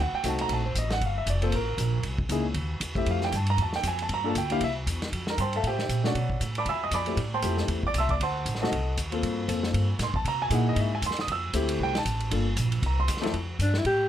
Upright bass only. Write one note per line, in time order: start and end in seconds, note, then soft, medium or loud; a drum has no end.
0.00 0.12 D2 medium
0.13 muted upright bass stroke soft
0.24 0.49 C2 medium
0.49 0.74 A#1 medium
0.75 1.00 A1 medium
1.01 1.26 G1 medium
1.26 1.52 F1 medium
1.52 1.77 A1 medium
1.78 2.03 A#1 medium
2.03 2.28 C2 medium
2.29 2.54 C#2 loud
2.54 2.80 D#2 medium
2.80 3.06 E2 loud
3.06 3.31 F2 medium
3.32 3.57 G2 loud
3.58 3.83 E2 medium
3.83 4.08 F2 loud
4.09 4.34 G2 medium
4.35 4.60 D2 medium
4.61 4.86 C2 medium
4.87 5.11 E2 medium
5.12 5.37 F2 medium
5.38 5.63 G2 loud
5.63 5.88 A2 medium
5.89 6.14 A#2 medium
6.15 6.40 B2 medium
6.40 6.65 A2 medium
6.66 6.91 E2 medium
6.91 7.16 F2 medium
7.17 7.42 A2 medium
7.43 7.67 F2 medium
7.68 7.93 E2 medium
7.94 8.19 C2 medium
8.20 8.45 D2 medium
8.46 8.71 A1 medium
8.72 8.97 C2 medium
8.97 9.22 D#2 medium
9.23 9.47 G2 medium
9.48 9.73 F2 medium
9.74 9.99 G2 medium
9.99 10.07 A2 medium
10.07 10.15 G2 medium
10.16 10.24 F2 medium
10.24 10.50 C3 medium
10.50 10.75 A#2 loud
10.76 11.01 G#2 loud
11.02 11.27 E2 loud
11.28 11.53 F2 medium
11.54 11.79 D2 medium
11.79 12.04 C2 medium
12.05 12.30 A1 loud
12.31 12.56 G1 medium
12.56 12.81 A#1 loud
12.83 13.07 C2 loud
13.08 13.33 E2 loud
13.33 13.58 F2 medium
13.59 13.84 G2 medium
13.85 14.09 A2 medium